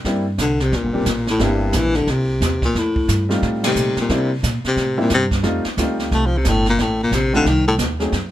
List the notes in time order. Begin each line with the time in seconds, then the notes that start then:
0.05 G2 G3 A#3 C4 D4 E4, brush sweep, kick, snare
0.38 C2 D3, kick, snare, hi-hat pedal
0.60 C3, snare
0.72 A#1 A#2, brush sweep, kick, snare
0.83 G1
0.93 E1 G3 A#3 C4 D4 G4
1.06 A1, kick, snare, hi-hat pedal
1.27 A2, snare
1.39 G1 G3 A#3 C4 D4 E4, brush sweep, kick, snare
1.44 G2
1.73 A#1 E3, kick, snare, hi-hat pedal
1.94 D3, snare
2.07 C2 C3, brush sweep, kick, snare
2.41 E2, kick, snare, hi-hat pedal
2.62 A#2, kick, snare
2.74 F2 A2, brush sweep, kick, snare
2.96 kick
3.08 G2, kick, snare, hi-hat pedal
3.29 G3 A3 C4 D#4 F4, snare
3.42 A2, brush sweep, kick, snare
3.63 C3 G3 A3 C4 D#4 G4, snare, ride
3.75 A#2, hi-hat pedal
3.97 A#2, muted upright bass stroke, snare
4.09 C3 G3 A#3 C4 D4 E4, brush sweep, kick, snare
4.43 A#2, kick, snare, hi-hat pedal
4.64 C3, muted upright bass stroke, snare
4.76 A2, brush sweep, kick, snare
4.97 A#2 G3 A#3 C4 D4 E4
5.10 G2, kick, snare, hi-hat pedal
5.14 C3
5.31 kick, snare
5.43 F2 G3 A3 C4 D#4 F4, brush sweep, kick, snare
5.65 muted upright bass stroke, snare
5.77 D2 G3 A3 C4 D#4 F4, kick, snare, hi-hat pedal
5.99 snare
6.11 C2 A3, brush sweep, kick, snare
6.26 F3
6.37 C3
6.45 G1 A2, kick, snare, hi-hat pedal
6.66 A#2, snare
6.78 A1 A2, brush sweep, kick, snare
7.03 A#2
7.11 A#1 C3, kick, snare, hi-hat pedal
7.33 D3 G3 A3 C4 D#4 F4, snare
7.45 C2 D#3, brush sweep, kick, snare
7.67 A2
7.78 D#2, kick, snare, hi-hat pedal
8.00 F#3 A3 C4 D#4 G#4, snare
8.12 F#2, brush sweep, kick, snare